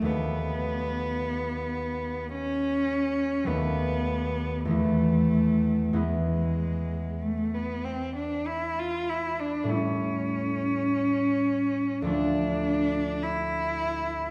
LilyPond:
<<
  \new Staff \with { instrumentName = "Cello" } { \time 4/4 \key e \phrygian \tempo 4 = 51 b2 cis'4 b4 | a4 gis4 a16 b16 c'16 d'16 e'16 f'16 e'16 d'16 | cis'2 d'4 e'4 | }
  \new Staff \with { instrumentName = "Harp" } { \clef bass \time 4/4 \key e \phrygian <dis, fis a b>2. <dis, fis a b>4 | <e, e b e'>4 <e, e b e'>2. | <a, g a e'>2 <d, f a d'>2 | }
>>